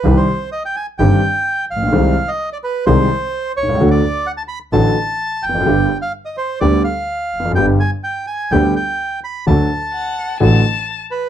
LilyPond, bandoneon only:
\new Staff \with { instrumentName = "Bandoneon" } { \time 4/4 \key g \phrygian \tempo 4 = 128 b'16 c''8. ees''16 g''16 aes''8 g''4. f''8~ | f''8. ees''8 d''16 b'8 c''4. des''8~ | des''16 d''8. fis''16 a''16 b''8 a''4. g''8~ | g''8. f''8 ees''16 c''8 d''8 f''4. |
g''8 aes''8 g''8 aes''8 g''8 g''4 b''8 | a''2 r4. b'8 | }